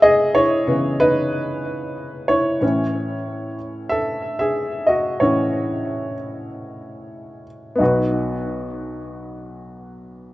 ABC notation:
X:1
M:4/4
L:1/16
Q:1/4=93
K:Bmix
V:1 name="Grand piano"
[Gd]2 [Ec]4 [DB]8 [Ec]2- | [Ec]8 [Ae]3 [Ge]3 [Fd]2 | [Ec]12- [Ec]2 z2 | [B,DFB]16 |]
V:2 name="Grand piano" clef=bass
z4 [C,E,B,]12 | [A,,E,C]6 z8 z2 | [A,,E,C]6 z8 z2 | B,,,16 |]